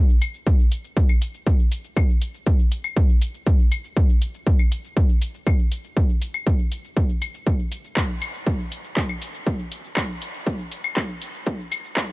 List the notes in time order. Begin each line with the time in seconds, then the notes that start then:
0.09 shaker
0.22 closed hi-hat, claves, shaker
0.34 shaker
0.47 kick, shaker
0.59 shaker
0.72 closed hi-hat, shaker
0.84 shaker
0.97 kick, shaker
1.09 claves, shaker
1.22 closed hi-hat, shaker
1.34 shaker
1.47 kick, shaker
1.59 shaker
1.72 closed hi-hat, shaker
1.84 shaker
1.97 kick, claves, shaker
2.09 shaker
2.22 closed hi-hat, shaker
2.34 shaker
2.47 kick, shaker
2.59 shaker
2.72 closed hi-hat, shaker
2.84 claves, shaker
2.97 kick, shaker
3.09 shaker
3.22 closed hi-hat, shaker
3.34 shaker
3.47 kick, shaker
3.59 shaker
3.72 closed hi-hat, claves, shaker
3.84 shaker
3.97 kick, shaker
4.09 shaker
4.22 closed hi-hat, shaker
4.34 shaker
4.47 kick, shaker
4.59 claves, shaker
4.72 closed hi-hat, shaker
4.84 shaker
4.97 kick, shaker
5.09 shaker
5.22 closed hi-hat, shaker
5.34 shaker
5.47 kick, claves, shaker
5.59 shaker
5.72 closed hi-hat, shaker
5.84 shaker
5.97 kick, shaker
6.09 shaker
6.22 closed hi-hat, shaker
6.34 claves, shaker
6.47 kick, shaker
6.59 shaker
6.72 closed hi-hat, shaker
6.84 shaker
6.97 kick, shaker
7.09 shaker
7.22 closed hi-hat, claves, shaker
7.34 shaker
7.47 kick, shaker
7.59 shaker
7.72 closed hi-hat, shaker
7.84 shaker
7.97 kick, clap, shaker
8.09 shaker
8.22 closed hi-hat, claves, shaker
8.34 shaker
8.47 kick, shaker
8.59 shaker
8.72 closed hi-hat, shaker
8.84 shaker
8.97 kick, clap, shaker
9.09 claves, shaker
9.22 closed hi-hat, shaker
9.34 shaker
9.47 kick, shaker
9.59 shaker
9.72 closed hi-hat, shaker
9.84 shaker
9.97 kick, clap, claves, shaker
10.09 shaker
10.22 closed hi-hat, shaker
10.34 shaker
10.47 kick, shaker
10.59 shaker
10.72 closed hi-hat, shaker
10.84 claves, shaker
10.97 kick, clap, shaker
11.09 shaker
11.22 closed hi-hat, shaker
11.34 shaker
11.47 kick, shaker
11.59 shaker
11.72 closed hi-hat, claves, shaker
11.84 shaker
11.97 kick, clap, shaker